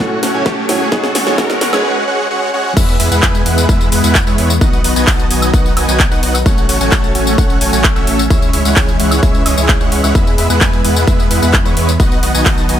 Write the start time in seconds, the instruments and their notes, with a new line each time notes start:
Already playing: analog synth pad F#3 A3 C#4, riser
0.00 grand piano A2 A3 C#4 F#4 A4, supersaw synth A3 C#4 F#4 C#5 F#5
0.23 supersaw synth A3 C#4 F#4 C#5 F#5, snare, open hi-hat
0.34 grand piano A2 A3 C#4 F#4 A4, supersaw synth A3 C#4 F#4 C#5 G#5
0.46 sub bass A2, supersaw synth A3 C#4 F#4 C#5 A5, kick, snare
0.68 grand piano A2 A3 C#4 F#4 A4, supersaw synth A3 C#4 F#4 C#5 G#5, snare, open hi-hat
0.92 grand piano G#2 G#3 C#4 F#4 G#4, analog synth pad E3 G#3, supersaw synth G#3 C#4 F#4 C#5 F#5, kick, snare
1.04 snare
1.15 sub bass C#2, supersaw synth G#3 C#4 F#4 C#5 F#5, snare, open hi-hat
1.26 grand piano G#2 G#3 C#4 F#4 G#4, supersaw synth G#3 C#4 F#4 C#5 G#5, snare
1.38 grand piano G#2 G#3 C#4 F#4 G#4, supersaw synth G#3 C#4 F#4 C#5 F#5, kick, snare, open hi-hat
1.50 snare
1.61 supersaw synth G#3 C#4 F#4 C#5 F#5, snare, open hi-hat
1.72 grand piano G#2 G#3 C#4 F#4 G#4, supersaw synth G#3 C#4 F#4 C#5 G#5, snare, high woodblock
1.84 supersaw synth G#3 C#4 F#4 C#5 F#5
2.08 supersaw synth G#3 C#4 F#4 C#5 F#5
2.31 supersaw synth G#3 C#4 F#4 C#5 F#5
2.54 supersaw synth G#3 C#4 F#4 C#5 F#5
2.77 sub bass E2, analog synth pad E3 G#3 B3, supersaw synth G#3 B3 E4 B4 E5, kick, crash, tambourine
2.89 tambourine
3.00 sub bass E2, supersaw synth G#3 B3 E4 B4 E5, open hi-hat
3.11 sub bass E2, supersaw synth G#3 B3 E4 B4 F#5, tambourine
3.23 sub bass E2, supersaw synth G#3 B3 E4 B4 G#5, kick, clap, tambourine
3.35 tambourine
3.46 sub bass E2, supersaw synth G#3 B3 E4 B4 F#5, open hi-hat
3.58 tambourine
3.69 sub bass E2, supersaw synth G#3 B3 E4 B4 E5, kick, tambourine
3.81 tambourine
3.92 sub bass E2, supersaw synth G#3 B3 E4 B4 F#5, open hi-hat
4.04 sub bass E2, supersaw synth G#3 B3 E4 B4 F#5, tambourine
4.15 kick, clap, tambourine
4.27 sub bass E2, supersaw synth G#3 B3 E4 B4 C#5, tambourine
4.38 sub bass E2, supersaw synth G#3 B3 E4 B4 C#5, open hi-hat
4.50 tambourine
4.61 sub bass B1, analog synth pad D#3 F#3, supersaw synth B3 D#4 F#4 D#5 F#5, kick, tambourine
4.73 tambourine
4.84 sub bass B1, supersaw synth B3 D#4 F#4 D#5 F#5, open hi-hat
4.96 sub bass B1, supersaw synth B3 D#4 F#4 D#5 G#5, tambourine
5.07 sub bass B1, supersaw synth B3 D#4 F#4 D#5 A5, kick, clap, open hi-hat, tambourine
5.19 tambourine
5.30 sub bass B1, supersaw synth B3 D#4 F#4 D#5 G#5, open hi-hat
5.42 tambourine, high woodblock
5.54 sub bass B1, supersaw synth B3 D#4 F#4 D#5 F#5, kick, tambourine
5.66 tambourine
5.77 sub bass B1, supersaw synth B3 D#4 F#4 D#5 G#5, open hi-hat, high woodblock
5.88 sub bass B1, supersaw synth B3 D#4 F#4 D#5 G#5, tambourine
6.00 kick, clap, tambourine
6.11 sub bass B1, supersaw synth B3 D#4 F#4 D#5 F#5, tambourine
6.23 sub bass B1, supersaw synth B3 D#4 F#4 D#5 F#5, open hi-hat
6.34 tambourine, high woodblock
6.46 sub bass A1, analog synth pad A3 C#4, supersaw synth A3 C#4 F#4 C#5 F#5, kick, tambourine
6.58 tambourine
6.69 sub bass A1, supersaw synth A3 C#4 F#4 C#5 F#5, open hi-hat
6.80 sub bass A1, supersaw synth A3 C#4 F#4 C#5 G#5, tambourine
6.92 sub bass A1, supersaw synth A3 C#4 F#4 C#5 A5, kick, clap, tambourine
7.04 tambourine
7.15 sub bass A1, supersaw synth A3 C#4 F#4 C#5 G#5, open hi-hat
7.27 tambourine
7.38 sub bass A1, supersaw synth A3 C#4 F#4 C#5 F#5, kick, tambourine
7.50 tambourine
7.61 sub bass A1, supersaw synth A3 C#4 F#4 C#5 G#5, open hi-hat
7.73 sub bass A1, supersaw synth A3 C#4 F#4 C#5 G#5, tambourine
7.84 kick, clap, tambourine
7.96 sub bass A1, supersaw synth A3 C#4 F#4 C#5 E5, tambourine
8.07 sub bass A1, supersaw synth A3 C#4 F#4 C#5 E5, open hi-hat
8.19 tambourine
8.30 sub bass C#2, analog synth pad E3 G#3, supersaw synth G#3 C#4 E4 C#5 E5, kick, tambourine
8.42 tambourine
8.53 sub bass C#2, supersaw synth G#3 C#4 E4 C#5 E5, open hi-hat
8.65 sub bass C#2, supersaw synth G#3 C#4 E4 C#5 F#5, tambourine
8.76 sub bass C#2, supersaw synth G#3 C#4 E4 C#5 G#5, kick, clap, open hi-hat, tambourine
8.88 tambourine
9.00 sub bass C#2, supersaw synth G#3 C#4 E4 C#5 F#5, open hi-hat
9.11 tambourine, high woodblock
9.23 sub bass C#2, supersaw synth G#3 C#4 E4 C#5 E5, kick, tambourine
9.35 tambourine
9.46 sub bass C#2, supersaw synth G#3 C#4 E4 C#5 D#5, open hi-hat, high woodblock
9.58 sub bass C#2, supersaw synth G#3 C#4 E4 C#5 G#5, tambourine
9.69 kick, clap, tambourine
9.81 sub bass C#2, supersaw synth G#3 C#4 E4 C#5 F#5, tambourine
9.92 sub bass C#2, supersaw synth G#3 C#4 E4 C#5 F#5, open hi-hat
10.04 sub bass C#2, supersaw synth G#3 C#4 E4 C#5 F#5, tambourine, high woodblock
10.15 sub bass E2, analog synth pad E3 B3, supersaw synth G#3 B3 E4 B4 E5, kick, tambourine
10.27 tambourine
10.38 sub bass E2, supersaw synth G#3 B3 E4 B4 E5, open hi-hat
10.50 sub bass E2, supersaw synth G#3 B3 E4 B4 F#5, tambourine
10.61 sub bass E2, supersaw synth G#3 B3 E4 B4 G#5, kick, clap, tambourine
10.73 tambourine
10.84 sub bass E2, supersaw synth G#3 B3 E4 B4 F#5, open hi-hat
10.96 tambourine
11.07 sub bass E2, supersaw synth G#3 B3 E4 B4 E5, kick, tambourine
11.20 tambourine
11.31 sub bass E2, supersaw synth G#3 B3 E4 B4 F#5, open hi-hat
11.42 sub bass E2, supersaw synth G#3 B3 E4 B4 F#5, tambourine
11.54 kick, clap, tambourine
11.65 sub bass E2, supersaw synth G#3 B3 E4 B4 C#5, tambourine
11.77 sub bass E2, supersaw synth G#3 B3 E4 B4 C#5, open hi-hat
11.89 tambourine
12.00 sub bass B1, analog synth pad D#3 F#3 B3, supersaw synth B3 D#4 F#4 D#5 F#5, kick, tambourine
12.12 tambourine
12.23 sub bass B1, supersaw synth B3 D#4 F#4 D#5 F#5, open hi-hat
12.34 sub bass B1, supersaw synth B3 D#4 F#4 D#5 G#5, tambourine
12.46 sub bass B1, supersaw synth B3 D#4 F#4 D#5 A5, kick, clap, open hi-hat, tambourine
12.58 tambourine
12.69 sub bass B1, supersaw synth B3 D#4 F#4 D#5 G#5, open hi-hat